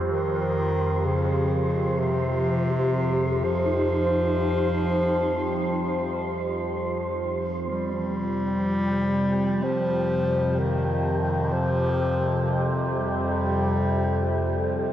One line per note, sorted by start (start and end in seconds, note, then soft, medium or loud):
0.00 7.69 F2 medium
0.00 14.93 F3 medium
0.00 14.93 F4 medium
0.00 14.93 G4 medium
0.00 7.73 C5 medium
0.00 14.93 C5 medium
0.09 1.06 D#3 loud
1.05 2.01 C#3 medium
1.99 3.45 C3 loud
2.70 3.85 G4 medium
3.44 6.76 F3 loud
3.66 9.38 D#4 medium
7.70 14.93 F2 medium
7.70 14.93 C3 medium
7.70 9.65 G3 loud
7.70 14.93 G4 medium
9.63 10.61 F3 loud
10.60 11.54 D#3 medium
11.53 12.68 F3 loud
12.97 14.82 G3 medium